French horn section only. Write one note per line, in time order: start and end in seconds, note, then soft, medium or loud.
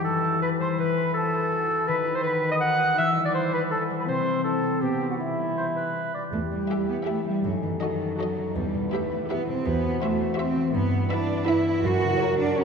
0.00 1.87 E3 medium
1.87 2.95 D#3 medium
2.98 4.06 E3 medium
4.08 4.82 C4 medium
4.82 5.20 B3 soft
5.20 6.14 E3 soft
6.32 7.40 E4 soft
6.32 7.40 G4 soft
7.43 8.54 D#4 soft
7.43 8.55 A4 soft
8.56 9.66 E4 soft
8.56 9.64 B4 soft
9.66 10.75 F#4 medium
9.66 10.76 C5 medium
10.74 11.80 E4 medium
10.74 11.81 B4 medium
11.84 12.64 F#4 medium
11.84 12.64 A#4 medium